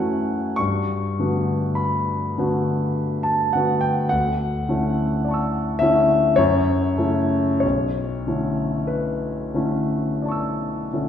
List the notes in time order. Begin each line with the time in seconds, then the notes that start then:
Already playing: E3 A3 C#4 F#4 F#5 G#5
0.56 G2 C#6
1.19 D3 A3 B3 F#4
1.75 B5
2.38 D3 A3 B3 F#4
3.23 A5
3.53 D3 A3 B3 F#4 F#5
3.81 G5
4.09 D2 F#5
4.69 D3 A3 C#4 E4
5.25 D5 A5
5.31 C#6 E6
5.79 D3 A3 C#4 E4 E5
6.36 F#2 C#5
6.98 C#3 A3 C#4 E4
7.60 B1 C#5
8.27 D3 A3 C#4 E4
8.87 B4
9.54 D3 A3 C#4 E4
10.22 D5 A5
10.28 C#6 E6
10.93 D3 A3 C#4 E4